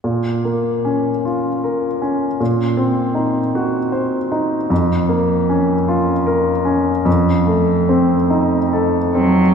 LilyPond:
<<
  \new Staff \with { instrumentName = "Grand piano" } { \time 3/4 \key bes \minor \tempo 4 = 76 bes,8 bes8 des'8 f'8 bes'8 des'8 | bes,8 c'8 ees'8 ges'8 c''8 ees'8 | f,8 bes8 des'8 f'8 bes'8 des'8 | f,8 a8 c'8 ees'8 a'8 c'8 | }
  \new Staff \with { instrumentName = "Cello" } { \clef bass \time 3/4 \key bes \minor r2. | r2. | r2. | r2 r8 ges8 | }
>>